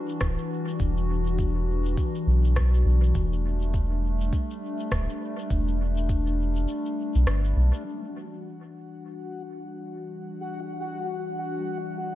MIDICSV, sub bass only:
0, 0, Header, 1, 2, 480
1, 0, Start_track
1, 0, Key_signature, 1, "minor"
1, 0, Tempo, 588235
1, 652, Time_signature, 4, 2, 24, 8
1, 9914, End_track
2, 0, Start_track
2, 0, Title_t, "Sub bass"
2, 0, Program_c, 0, 38
2, 171, Note_on_c, 0, 26, 99
2, 298, Note_off_c, 0, 26, 0
2, 652, Note_on_c, 0, 28, 97
2, 1593, Note_off_c, 0, 28, 0
2, 1850, Note_on_c, 0, 35, 86
2, 2313, Note_off_c, 0, 35, 0
2, 2330, Note_on_c, 0, 35, 99
2, 2548, Note_off_c, 0, 35, 0
2, 2571, Note_on_c, 0, 28, 97
2, 3513, Note_off_c, 0, 28, 0
2, 4011, Note_on_c, 0, 26, 101
2, 4138, Note_off_c, 0, 26, 0
2, 4491, Note_on_c, 0, 28, 100
2, 5433, Note_off_c, 0, 28, 0
2, 5835, Note_on_c, 0, 35, 102
2, 5920, Note_off_c, 0, 35, 0
2, 5932, Note_on_c, 0, 31, 78
2, 6149, Note_off_c, 0, 31, 0
2, 6170, Note_on_c, 0, 35, 78
2, 6298, Note_off_c, 0, 35, 0
2, 9914, End_track
0, 0, End_of_file